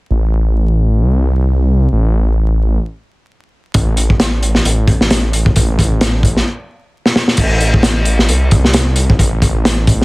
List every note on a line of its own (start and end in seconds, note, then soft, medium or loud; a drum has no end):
0.10 1.03 A1 medium
1.01 1.87 C2 medium
1.92 2.78 A1 medium
3.74 4.60 A1 loud
3.74 kick loud
3.74 closed hi-hat medium
3.97 closed hi-hat medium
4.10 kick medium
4.20 snare loud
4.20 closed hi-hat medium
4.43 closed hi-hat medium
4.55 snare soft
4.65 4.94 A1 medium
4.65 closed hi-hat medium
4.88 kick medium
4.88 closed hi-hat medium
5.01 5.51 A1 medium
5.01 snare medium
5.10 snare loud
5.10 closed hi-hat medium
5.33 closed hi-hat medium
5.46 kick medium
5.56 6.42 A1 loud
5.56 kick loud
5.56 closed hi-hat medium
5.79 kick loud
5.79 closed hi-hat medium
6.01 snare loud
6.01 closed hi-hat loud
6.23 kick medium
6.23 closed hi-hat medium
6.37 snare soft
7.06 snare medium
7.16 snare medium
7.28 snare medium
7.37 8.30 A1 loud
7.37 kick loud
7.37 closed hi-hat medium
7.37 crash medium
7.61 closed hi-hat medium
7.74 kick loud
7.83 snare loud
7.83 closed hi-hat medium
8.05 closed hi-hat medium
8.19 snare soft
8.28 9.14 C2 loud
8.28 closed hi-hat medium
8.51 kick medium
8.51 closed hi-hat medium
8.65 snare medium
8.73 snare loud
8.73 closed hi-hat loud
8.96 closed hi-hat medium
9.10 kick loud
9.19 10.05 A1 loud
9.19 kick medium
9.19 closed hi-hat medium
9.42 kick medium
9.42 closed hi-hat medium
9.65 snare loud
9.65 closed hi-hat medium
9.87 kick loud
9.87 closed hi-hat medium
10.02 snare soft